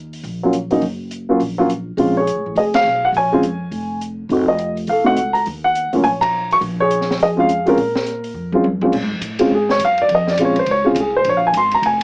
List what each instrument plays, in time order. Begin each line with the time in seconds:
Already playing: upright bass D#2
0.13 open hi-hat
0.24 upright bass A#1, open hi-hat
0.43 upright piano F#3 A#3 C#4 F4
0.53 closed hi-hat
0.71 upright piano F#3 A#3 C#4 D#4, open hi-hat
0.82 upright bass F#1, open hi-hat
1.11 closed hi-hat
1.29 upright piano F#3 A#3 C#4 F4
1.40 upright bass A#1, open hi-hat
1.58 upright piano F#3 A#3 C#4 F4
1.70 closed hi-hat
1.97 upright bass A#1, upright piano G#3 C4 C#4 F4, open hi-hat
2.17 upright piano G#4 C#5
2.27 closed hi-hat
2.36 upright bass C#2
2.46 upright bass A1
2.55 upright bass F1, upright piano G#4 D#5, open hi-hat
2.74 upright piano F5, snare, ride
2.84 upright bass B1
3.05 upright piano F#5
3.12 upright bass A#1, open hi-hat
3.17 upright piano C#5 G#5
3.32 upright piano G#3 C4 C#4 F4
3.42 upright bass F2, closed hi-hat
3.71 upright bass F1, open hi-hat
4.01 closed hi-hat
4.29 upright bass F1, upright piano A3 C4 D#4 F#4, open hi-hat
4.48 upright piano D#5
4.58 closed hi-hat
4.77 open hi-hat
4.87 upright bass C2, upright piano F5, open hi-hat
4.91 upright piano A4
5.04 upright piano A3 C4 D#4 F#4 F#5
5.17 upright bass C#2, closed hi-hat
5.33 upright piano A#5, open hi-hat
5.46 upright bass D#2, open hi-hat
5.64 upright piano F#5
5.75 closed hi-hat
5.93 upright bass D2, upright piano F#3 A#3 C#4 F4, open hi-hat
6.04 upright bass A#1, upright piano C#5 G#5, open hi-hat
6.21 upright piano A#5, kick, ride
6.51 upright piano C#6, open hi-hat
6.61 upright bass A#1, open hi-hat
6.80 upright piano G#4 C#5
6.91 closed hi-hat
7.01 snare
7.11 snare
7.20 upright bass F2, upright piano G#4 D#5, open hi-hat
7.37 upright piano G#3 C4 C#4 F4 F5
7.49 closed hi-hat
7.66 upright piano G#3 C4 C#4 F4 A#4, open hi-hat
7.77 upright bass A#2, open hi-hat
7.96 snare
8.06 closed hi-hat
8.24 open hi-hat
8.34 upright bass F2
8.52 upright piano G#3 C4 C#4 F4, high tom
8.64 high tom
8.81 upright piano A#2 G#3 C4 C#4 F4, floor tom
8.92 upright bass A#2, kick, crash
9.02 upright bass G#2
9.12 upright bass F2
9.21 upright bass A2, hi-hat pedal, ride
9.39 upright piano G#3 C4 C#4 F4, ride
9.50 upright bass G#2
9.55 upright piano G#4
9.69 upright piano C#5, snare
9.79 upright bass F#2, hi-hat pedal, ride
9.85 upright piano F5
9.98 ride
10.02 upright piano D5
10.09 upright bass F2, ride
10.15 upright piano D#5
10.27 upright piano D5, snare
10.37 upright bass A#1, upright piano G#3 C4 C#4 F4, hi-hat pedal, ride
10.45 upright piano C#5
10.56 upright piano C5, ride
10.66 upright bass C#2, ride
10.71 upright piano C#5
10.84 upright piano G#3 C4 C#4 F4
10.95 upright bass C2, hi-hat pedal, ride
11.00 upright piano G#4
11.16 upright piano C5
11.24 upright bass A#1, ride
11.29 upright piano C#5
11.37 upright piano F5
11.47 upright piano G#5
11.53 upright bass G#1, hi-hat pedal, ride
11.57 upright piano C6
11.71 upright piano A#5, ride
11.82 upright bass F1, upright piano G#5, ride